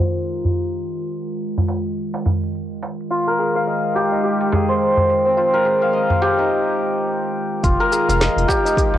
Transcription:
Already playing: ambient pad D#3 G#3 F4, santur C4 D#4 F4 G4 A#4 C5 F5
0.45 darbuka dum
0.57 shaker
0.73 shaker
0.85 shaker
1.13 shaker
1.29 shaker
1.41 shaker
1.58 darbuka dum
1.69 darbuka ka, darbuka tek, shaker
1.86 shaker
1.98 shaker
2.14 darbuka tek
2.26 darbuka ka, darbuka dum, shaker
2.43 shaker
2.55 shaker
2.83 darbuka tek, shaker
3.00 shaker
3.11 santur F4, ambient pad G5
3.28 santur A#4
3.39 santur G#4, darbuka ka, shaker
3.55 santur F5
3.67 santur D#5, shaker
3.95 santur G4, darbuka ka, darbuka tek, shaker
4.12 santur D#4, shaker
4.24 santur G4, shaker
4.41 darbuka ka
4.52 santur G#4, darbuka tek, darbuka dum, shaker
4.68 santur C5, shaker
4.81 shaker
4.97 darbuka dum
5.09 shaker
5.25 santur C4, shaker
5.37 santur F4, shaker
5.54 santur A#4
5.65 santur G#4, shaker
5.82 santur F5, shaker
5.93 santur D#5, shaker
6.10 darbuka dum
6.22 santur G4, darbuka ka, darbuka tek, shaker
6.39 santur D#4, shaker
7.63 analog synth bass F1, ambient pad D#3 G#3 F4, santur F4, kick, closed hi-hat, shaker
7.80 santur A#4
7.92 santur G#4, closed hi-hat, darbuka ka, shaker
8.09 analog synth bass F1, santur F5, closed hi-hat, shaker
8.20 santur D#5, snare, closed hi-hat, shaker
8.36 analog synth bass F1, closed hi-hat
8.48 santur G4, kick, darbuka ka, darbuka tek, shaker
8.65 santur D#4, closed hi-hat, shaker
8.77 santur G4, kick, closed hi-hat, shaker
8.93 analog synth bass F1, darbuka ka

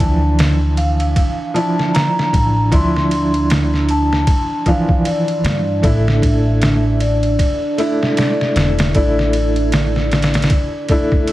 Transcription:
Already playing: upright bass D2, felt piano E3 F3 D4, analog synth pad D4, vibraphone A5
0.00 ride
0.39 snare, ride
0.77 vibraphone F5, ride
1.00 ride
1.16 kick, ride
1.54 felt piano F3 D4 E4, vibraphone A5, ride
1.79 snare
1.94 vibraphone A#5, snare, ride
2.19 snare
2.33 upright bass A1, kick, ride
2.72 upright bass D2, felt piano F3 D4 E4, vibraphone C6, kick, ride
2.96 snare
3.11 ride
3.34 ride
3.50 snare, ride
3.74 snare
3.89 vibraphone A5, ride
4.13 snare
4.27 kick, ride
4.66 felt piano E3 F3 D4, vibraphone F5, kick, ride
4.89 kick
5.05 vibraphone D5, ride
5.28 ride
5.44 upright bass G2, snare, ride
5.82 upright bass A1, felt piano A3 D4 E4, vibraphone E5, kick, ride
6.08 snare
6.22 kick, ride
6.62 snare, ride
7.00 vibraphone D5, ride
7.23 ride
7.39 kick, ride
7.78 felt piano A3 D4 E4, vibraphone E5, ride
8.03 snare
8.17 vibraphone D5, snare, ride
8.41 snare
8.56 upright bass E1, snare, ride
8.79 snare, ride
8.95 upright bass A1, felt piano A3 D4 E4, vibraphone D5, kick, ride
9.19 snare
9.33 ride
9.56 ride
9.72 snare, ride
9.96 snare
10.12 snare, ride
10.22 snare, ride
10.34 snare, ride
10.42 snare, ride
10.50 kick, ride
10.88 felt piano A3 D4 E4, kick, ride
11.12 kick
11.27 ride

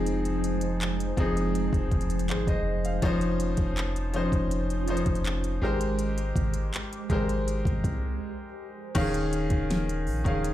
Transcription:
Already playing: 808-style bass F1, grand piano F3 C4 D#4 G#4, analog synth pad F3 G#3 D#4 C5
0.06 closed hi-hat
0.25 closed hi-hat
0.44 closed hi-hat
0.61 closed hi-hat
0.81 clap, closed hi-hat
1.00 closed hi-hat
1.17 808-style bass F1, grand piano F3 C4 D#4 G#4, kick, closed hi-hat
1.37 closed hi-hat
1.55 closed hi-hat
1.73 808-style bass F1, kick, closed hi-hat
1.91 808-style bass F1, kick, closed hi-hat
2.01 closed hi-hat
2.10 closed hi-hat
2.19 closed hi-hat
2.29 808-style bass G#1, grand piano G#4 C5, clap, closed hi-hat
2.47 808-style bass F1, grand piano C5 D#5, kick, closed hi-hat
2.85 grand piano F5, closed hi-hat
3.02 808-style bass F1, grand piano F3 C#4 D#4 C5, analog synth pad C#4 F4, kick, closed hi-hat
3.21 closed hi-hat
3.40 closed hi-hat
3.57 808-style bass F1, kick, closed hi-hat
3.77 clap, closed hi-hat
3.96 closed hi-hat
4.13 grand piano F3 C#4 D#4 C5, closed hi-hat
4.32 808-style bass F1, kick, closed hi-hat
4.51 closed hi-hat
4.70 closed hi-hat
4.87 grand piano F3 C#4 D#4 C5, closed hi-hat
4.97 closed hi-hat
5.06 808-style bass F1, kick, closed hi-hat
5.15 closed hi-hat
5.25 clap, closed hi-hat
5.44 closed hi-hat
5.62 808-style bass G#1, grand piano G#3 G4 A#4 C5, analog synth pad G#3 G4
5.81 closed hi-hat
5.99 closed hi-hat
6.18 closed hi-hat
6.36 808-style bass G#1, kick, closed hi-hat
6.54 closed hi-hat
6.74 clap, closed hi-hat
6.93 closed hi-hat
7.09 808-style bass G#1, grand piano G#3 G4 A#4 C5, kick, closed hi-hat
7.29 closed hi-hat
7.48 closed hi-hat
7.65 808-style bass G#1, kick, closed hi-hat
7.84 808-style bass C2, kick, closed hi-hat
8.95 808-style bass D#1, grand piano D#3 C#4 G#4 F5, kick, closed hi-hat, crash
9.14 closed hi-hat
9.33 closed hi-hat
9.50 808-style bass D#1, kick, closed hi-hat
9.70 snare, closed hi-hat
9.89 closed hi-hat
10.07 808-style bass A#1, open hi-hat
10.24 808-style bass D#1, grand piano D#3 C#4 G#4 F5, kick, closed hi-hat
10.44 closed hi-hat

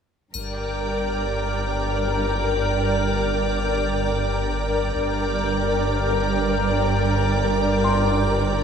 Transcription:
0.34 double bass section G1, sub bass G1, cello section G2, violin section A#4, ambient pad A#4 D5 G5, triangle
2.08 grand piano A#5
4.96 sub bass G1, double bass section G1, cello section G2, violin section A#4, ambient pad A#4 D5 G5
7.84 grand piano C6

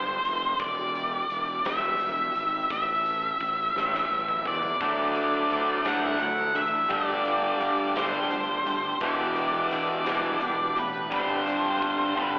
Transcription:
Already playing: fingered electric bass G1, lead electric guitar C5
0.25 fingered electric bass F1, closed hi-hat
0.60 fingered electric bass E1, lead electric guitar D5, kick, closed hi-hat
0.95 closed hi-hat
1.30 fingered electric bass E1, closed hi-hat
1.65 fingered electric bass E1, lead electric guitar E5, snare, closed hi-hat
2.00 fingered electric bass E1, closed hi-hat
2.35 fingered electric bass G#1, closed hi-hat
2.70 fingered electric bass A1, lead electric guitar E5, kick, closed hi-hat
3.06 closed hi-hat
3.41 fingered electric bass A1, kick, closed hi-hat
3.75 fingered electric bass A1, snare
3.94 snare
4.10 fingered electric bass A1
4.28 mid tom
4.45 fingered electric bass E2, lead electric guitar D5, mid tom
4.63 floor tom
4.81 fingered electric bass D2, clean electric guitar D3 F#3 A3 E4, distorted electric guitar D3 A3 D4, kick, closed hi-hat
5.15 clean electric guitar F#3 A3 E4, closed hi-hat
5.50 fingered electric bass D2, clean electric guitar D3 F#3 A3 E4, closed hi-hat
5.85 fingered electric bass D2, distorted electric guitar D3 A3 D4, clean electric guitar F#3 A3 E4, lead electric guitar F#5, snare, closed hi-hat
6.19 fingered electric bass D2, distorted electric guitar D3 A3, clean electric guitar D3 F#3 A3 E4, lead electric guitar F#5, closed hi-hat
6.55 fingered electric bass A1, distorted electric guitar D3 A3, clean electric guitar F#3 A3 E4, lead electric guitar E5, closed hi-hat
6.89 fingered electric bass G1, distorted electric guitar G2 D3 G3, clean electric guitar G3 A3 D4 G4, lead electric guitar D5, kick, closed hi-hat
7.25 clean electric guitar A3 D4 G4, closed hi-hat
7.59 fingered electric bass G1, clean electric guitar G3 A3 D4 G4, closed hi-hat
7.95 fingered electric bass G1, distorted electric guitar G2 D3 G3, clean electric guitar A3 D4 G4, lead electric guitar C5, snare, closed hi-hat
8.30 fingered electric bass G1, distorted electric guitar G2 D3, clean electric guitar G3 A3 D4 G4, closed hi-hat
8.66 fingered electric bass G1, distorted electric guitar G2 D3, clean electric guitar A3 D4 G4, closed hi-hat
9.00 fingered electric bass E1, distorted electric guitar E2 B2 E3, clean electric guitar E3 B3 D4 G4, lead electric guitar D5, kick, closed hi-hat
9.36 clean electric guitar B3 D4 G4, closed hi-hat
9.71 fingered electric bass E1, clean electric guitar E3 B3 D4 G4, lead electric guitar D5, closed hi-hat
10.05 fingered electric bass E1, distorted electric guitar E2 B2 E3, clean electric guitar B3 D4 G4, snare, closed hi-hat
10.41 fingered electric bass E1, distorted electric guitar E2 B2, clean electric guitar E3 B3 D4 G4, closed hi-hat
10.76 fingered electric bass A1, distorted electric guitar E2 B2, clean electric guitar B3 D4 G4, lead electric guitar B4, closed hi-hat
11.10 fingered electric bass G1, distorted electric guitar G2 D3 G3, clean electric guitar G3 C4 D4, lead electric guitar C5, kick, closed hi-hat
11.14 clean electric guitar G4
11.47 clean electric guitar C4 D4 G4, closed hi-hat
11.81 fingered electric bass G1, clean electric guitar G3 C4 D4 G4, kick, closed hi-hat
12.15 fingered electric bass G1, distorted electric guitar G2 D3 G3, clean electric guitar C4 D4 G4, kick
12.22 lead electric guitar B4

